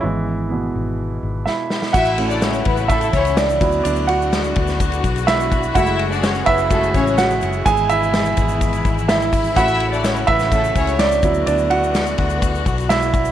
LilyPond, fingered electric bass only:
\new Staff \with { instrumentName = "Fingered electric bass" } { \clef bass \time 4/4 \key a \major \tempo 4 = 126 gis,,4. gis,,4 gis,,8 r4 | a,,4. a,,4 cis,4 d,8 | d,4. d,4 b,,4. | fis,,4. fis,,4 a,,4 fis,,8 |
gis,,4. gis,,4 gis,,4. | a,,4. a,,4 cis,4 d,8 | d,4. d,4 b,,4. | }